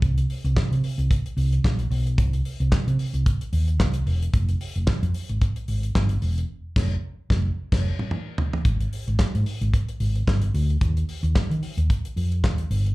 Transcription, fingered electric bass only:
0.02 C2
0.44 C2
0.71 C3
0.98 C2
1.37 C2
1.64 A#1
1.90 B1
2.18 C2
2.60 C2
2.87 C3
3.13 C2
3.53 D#2
3.80 C2
4.06 E1
4.34 F1
4.76 F1
5.03 F2
5.29 G#1
5.68 G#1
5.95 G1
6.22 E1
6.76 F1
7.30 F1
7.72 F1
8.65 G#1
9.07 G#1
9.35 G#2
9.61 G#1
10.00 G#1
10.27 G1
10.54 D2
10.81 D#2
11.23 D#2
11.36 muted fingered electric bass stroke
11.50 D#3
11.77 D#2
12.16 F2
12.44 D#2
12.70 G1

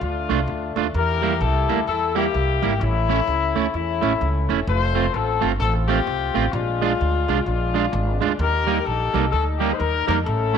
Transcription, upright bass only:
0.01 D2
0.30 C2
0.47 D2
0.76 D#2
0.94 E2
1.41 C2
1.69 D2
1.87 E2
2.34 C2
2.63 G#1
2.81 A1
3.27 C#2
3.56 D2
3.74 E2
4.03 A1
4.21 C#2
4.50 E1
4.67 F1
5.14 A1
5.42 G1
5.60 A1
6.07 C2
6.35 A1
6.53 A#1
7.01 D2
7.28 C2
7.46 A#1
7.93 G#1
8.22 D2
8.39 D#2
8.86 A#1
9.14 C2
9.33 D2
9.80 D#2
10.08 F2
10.26 A1

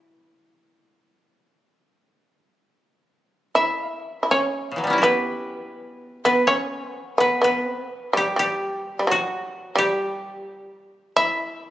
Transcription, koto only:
Already playing: E4 F#4
3.56 E5
4.31 C#5
4.72 C#3
4.76 E3 F#3
4.84 G3 B3
4.90 C#4 E4
4.98 F#4 G4
5.03 B4
6.25 B4
6.47 C#5
6.90 B4
7.20 B4
7.44 B4
8.17 G4
8.39 G4
9.11 F#4
9.78 G4
11.17 E5

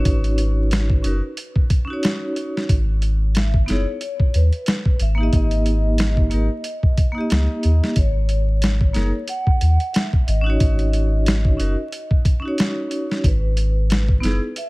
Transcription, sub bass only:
0.06 G#1
1.04 F#1
2.69 G#1
3.69 F#1
4.35 D#2
5.00 G#1
5.33 G#1
6.32 G#1
7.31 C#2
7.64 D#2
7.97 G#1
8.95 F#1
9.61 D#2
10.28 G#1
10.61 G#1
11.59 F#1
13.24 G#1
14.22 F#1

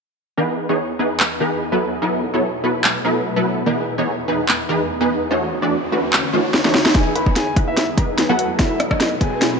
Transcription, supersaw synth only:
0.37 E3 B3 D#4 G#4 B4
0.69 E3 B3 D#4 G#4 C#5
0.99 E3 B3 D#4 G#4 B4
1.40 E3 B3 D#4 G#4 B4
1.72 F#3 B3 E4 A4 B4
2.02 F#3 B3 E4 A4 B4
2.34 F#3 B3 E4 A4 C#5
2.64 F#3 B3 E4 A4 B4
3.05 F#3 B3 E4 A4 B4
3.36 F#3 B3 E4 A4 B4
3.66 E3 B3 D#4 G#4 B4
3.98 E3 B3 D#4 G#4 C#5
4.28 E3 B3 D#4 G#4 B4
4.69 E3 B3 D#4 G#4 B4
5.01 E3 B3 D#4 G#4 B4
5.31 E3 A3 D4 F#4 C#5
5.62 E3 A3 D4 F#4 D5
5.92 E3 A3 D4 F#4 B4
6.33 E3 A3 D4 F#4 C#5
6.65 E3 A3 D4 F#4 C#5
6.95 E3 B3 D#4 G#4 B4
7.27 E3 B3 D#4 G#4 C#5
7.57 E3 B3 D#4 G#4 B4
7.98 E3 B3 D#4 G#4 B4
8.29 F#3 B3 E4 A4 B4
8.59 F#3 B3 E4 A4 B4
8.91 F#3 B3 E4 A4 C#5
9.21 F#3 B3 E4 A4 B4

